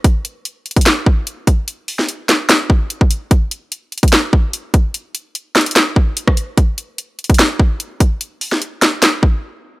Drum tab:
HH |x---x---x---xxxxx-------x---x---|x---o---x---x---x-------x---x---|x---x---x---xxxxx-------x---x---|x---x---x---xxxxx-------x---x---|
CP |----------------x---------------|------------x---x---------------|----------------x---------------|------------x---x---------------|
SD |----------------o---------------|------o-----o---o---------------|----------------o---------------|------------o---o---------r-----|
BD |o-------------o-----o-------o---|--------------------o-----o-----|o-------------o-----o-------o---|--------------------o-----o-----|

HH |x---x---x---xxxxx-------x---x---|x---o---x---x---x---------------|
CP |----------------x---------------|------------x---x---------------|
SD |----------------o---------------|------o-----o---o---------------|
BD |o-------------o-----o-------o---|--------------------o-----------|